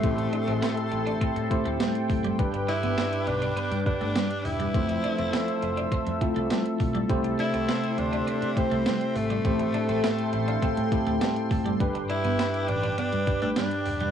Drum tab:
HH |xxxxxxxxxxxxxxox|xxxxxxxxxxxxxxox|xxxxxxxxxxxxxxox|xxxxxxxxxxxxxxox|
TB |----x-------x---|----x-------x---|----x-------x---|----x-------x---|
SD |----o-------o---|----o-------o---|----o-------o---|----o-------o---|
BD |o-------o-o---o-|o---------o-----|o-------o-o---o-|o---------o-----|

HH |xxxxxxxxxxxxxxox|xxxxxxxxxxxxxxox|
TB |----x-------x---|----x-------x---|
SD |----o-------o---|----o-------o---|
BD |o-------o-o---o-|o---------o-----|